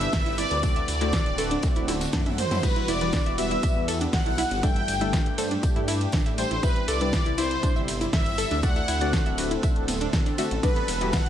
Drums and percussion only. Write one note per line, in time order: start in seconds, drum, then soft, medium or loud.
0.01 closed hi-hat soft
0.01 closed hi-hat medium
0.13 kick loud
0.13 snare loud
0.13 closed hi-hat medium
0.13 open hi-hat medium
0.13 ride medium
0.26 snare soft
0.26 closed hi-hat soft
0.38 open hi-hat loud
0.38 ride medium
0.38 tambourine medium
0.51 snare medium
0.51 closed hi-hat medium
0.63 kick loud
0.63 closed hi-hat medium
0.63 ride medium
0.63 tambourine medium
0.76 closed hi-hat soft
0.88 open hi-hat loud
0.88 ride medium
0.88 tambourine medium
1.01 closed hi-hat medium
1.13 kick loud
1.13 snare loud
1.13 closed hi-hat medium
1.13 ride medium
1.13 tambourine medium
1.26 closed hi-hat soft
1.38 open hi-hat loud
1.38 ride medium
1.38 tambourine medium
1.51 closed hi-hat medium
1.63 kick loud
1.63 snare loud
1.63 closed hi-hat medium
1.63 ride medium
1.63 tambourine medium
1.76 closed hi-hat soft
1.88 snare loud
1.88 open hi-hat loud
1.88 high tom medium
1.88 ride medium
1.88 tambourine medium
2.01 snare loud
2.01 closed hi-hat medium
2.01 tambourine medium
2.12 kick loud
2.12 snare loud
2.12 closed hi-hat medium
2.12 open hi-hat medium
2.12 mid tom medium
2.12 ride medium
2.26 snare soft
2.26 closed hi-hat soft
2.26 mid tom medium
2.38 mid tom medium
2.38 open hi-hat loud
2.38 ride medium
2.38 tambourine medium
2.51 snare loud
2.51 closed hi-hat medium
2.51 mid tom medium
2.51 open hi-hat medium
2.63 kick loud
2.63 closed hi-hat medium
2.63 crash medium
2.63 ride medium
2.63 tambourine medium
2.76 closed hi-hat soft
2.88 open hi-hat loud
2.88 ride medium
2.88 tambourine medium
3.01 closed hi-hat medium
3.13 kick loud
3.13 snare loud
3.13 closed hi-hat medium
3.13 ride medium
3.13 tambourine medium
3.26 closed hi-hat soft
3.38 open hi-hat loud
3.38 ride medium
3.38 tambourine medium
3.51 closed hi-hat medium
3.63 kick loud
3.63 closed hi-hat medium
3.63 ride medium
3.63 tambourine medium
3.88 open hi-hat loud
3.88 ride medium
3.88 tambourine medium
4.01 closed hi-hat soft
4.01 closed hi-hat medium
4.13 kick loud
4.13 snare loud
4.13 closed hi-hat medium
4.13 open hi-hat medium
4.13 ride medium
4.26 snare soft
4.26 closed hi-hat soft
4.38 open hi-hat loud
4.38 ride medium
4.38 tambourine medium
4.51 snare soft
4.51 closed hi-hat medium
4.63 kick loud
4.63 closed hi-hat medium
4.63 ride medium
4.63 tambourine medium
4.76 closed hi-hat soft
4.88 open hi-hat loud
4.88 ride medium
4.88 tambourine medium
5.01 closed hi-hat medium
5.13 kick loud
5.13 snare loud
5.13 closed hi-hat medium
5.13 ride medium
5.13 tambourine loud
5.26 closed hi-hat soft
5.38 open hi-hat loud
5.38 ride medium
5.38 tambourine medium
5.51 closed hi-hat medium
5.63 kick loud
5.63 closed hi-hat medium
5.63 ride medium
5.63 tambourine medium
5.76 closed hi-hat soft
5.88 open hi-hat loud
5.88 ride medium
5.88 tambourine medium
6.01 closed hi-hat medium
6.12 kick loud
6.12 snare loud
6.12 closed hi-hat medium
6.12 ride medium
6.12 tambourine medium
6.26 snare medium
6.26 closed hi-hat soft
6.38 open hi-hat loud
6.38 ride medium
6.38 tambourine medium
6.51 closed hi-hat medium
6.63 kick loud
6.63 closed hi-hat medium
6.63 ride medium
6.63 tambourine loud
6.76 closed hi-hat soft
6.88 open hi-hat loud
6.88 ride medium
6.88 tambourine medium
7.01 closed hi-hat medium
7.13 kick loud
7.13 snare loud
7.13 closed hi-hat medium
7.13 ride medium
7.13 tambourine loud
7.25 closed hi-hat soft
7.38 open hi-hat loud
7.38 ride medium
7.38 tambourine medium
7.51 closed hi-hat medium
7.63 kick loud
7.63 closed hi-hat medium
7.63 ride medium
7.63 tambourine medium
7.88 open hi-hat loud
7.88 ride medium
7.88 tambourine medium
8.01 closed hi-hat soft
8.13 kick loud
8.13 snare loud
8.13 closed hi-hat medium
8.13 open hi-hat medium
8.13 ride medium
8.26 snare soft
8.26 closed hi-hat soft
8.38 open hi-hat loud
8.38 ride medium
8.38 tambourine medium
8.51 snare soft
8.51 closed hi-hat medium
8.63 kick loud
8.63 closed hi-hat medium
8.63 ride medium
8.63 tambourine medium
8.76 closed hi-hat soft
8.88 open hi-hat loud
8.88 ride medium
8.88 tambourine medium
9.01 closed hi-hat soft
9.13 kick loud
9.13 snare loud
9.13 closed hi-hat medium
9.13 ride medium
9.13 tambourine medium
9.26 closed hi-hat soft
9.38 open hi-hat loud
9.38 ride medium
9.38 tambourine medium
9.51 closed hi-hat medium
9.63 kick loud
9.63 closed hi-hat medium
9.63 ride medium
9.63 tambourine medium
9.76 closed hi-hat soft
9.88 open hi-hat loud
9.88 ride medium
9.88 tambourine medium
10.01 closed hi-hat soft
10.13 kick loud
10.13 snare loud
10.13 closed hi-hat medium
10.13 ride medium
10.13 tambourine medium
10.26 snare medium
10.26 closed hi-hat soft
10.38 open hi-hat loud
10.38 ride medium
10.38 tambourine medium
10.51 closed hi-hat medium
10.63 kick loud
10.63 closed hi-hat medium
10.63 ride medium
10.63 tambourine medium
10.76 closed hi-hat soft
10.88 open hi-hat loud
10.88 ride medium
10.88 tambourine medium
11.01 closed hi-hat soft
11.13 kick loud
11.13 snare loud
11.13 closed hi-hat medium
11.13 ride medium
11.13 tambourine loud
11.26 closed hi-hat soft